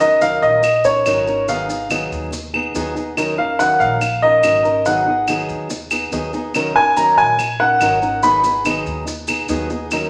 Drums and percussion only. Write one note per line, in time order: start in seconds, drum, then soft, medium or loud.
0.00 maracas medium
0.21 maracas medium
0.42 maracas soft
0.63 claves medium
0.63 maracas medium
0.84 maracas medium
1.06 claves medium
1.06 maracas medium
1.27 maracas soft
1.48 maracas medium
1.70 maracas medium
1.90 claves medium
1.90 maracas medium
2.12 maracas soft
2.33 maracas medium
2.54 claves medium
2.75 maracas medium
2.96 maracas soft
3.17 claves medium
3.17 maracas medium
3.60 maracas medium
3.81 maracas soft
4.01 claves medium
4.01 maracas medium
4.43 claves medium
4.43 maracas medium
4.65 maracas soft
4.86 maracas medium
5.28 claves medium
5.28 maracas medium
5.49 maracas soft
5.70 maracas medium
5.91 claves medium
5.91 maracas medium
6.12 maracas medium
6.33 maracas soft
6.55 claves medium
6.55 maracas medium
6.97 maracas medium
7.18 maracas soft
7.39 claves medium
7.39 maracas medium
7.81 claves medium
7.81 maracas medium
8.02 maracas soft
8.23 maracas medium
8.44 maracas medium
8.65 claves medium
8.65 maracas medium
8.86 maracas soft
9.07 maracas medium
9.28 claves medium
9.28 maracas medium
9.49 maracas medium
9.70 maracas soft
9.91 claves medium
9.91 maracas medium